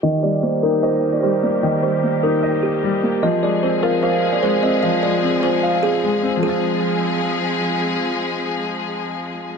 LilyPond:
<<
  \new Staff \with { instrumentName = "Kalimba" } { \time 4/4 \key f \minor \tempo 4 = 150 ees''8 d''8 c''8 bes'8 c''8. d''16 c''8 d''8 | ees''8 c''4 bes'4 g'4. | ees''8 d''8 c''8 bes'8 c''8. d''16 c''8 ees''8 | f''8 d''4 c''4 aes'4. |
aes'2. r4 | r1 | }
  \new Staff \with { instrumentName = "Grand piano" } { \time 4/4 \key f \minor ees8 g8 bes8 ees'8 ees''4 g8 bes8 | ees8 g8 bes8 ees'8 ees''4 g8 bes8 | f8 aes8 c'8 f'8 f''4 aes8 c'8 | f8 aes8 c'8 f'8 f''4 aes8 c'8 |
<f aes c' f'>1~ | <f aes c' f'>1 | }
  \new Staff \with { instrumentName = "String section" } { \time 4/4 \key f \minor <ees g bes g'>1~ | <ees g bes g'>1 | <f aes c' aes'>1~ | <f aes c' aes'>1 |
<f aes c' aes'>1~ | <f aes c' aes'>1 | }
>>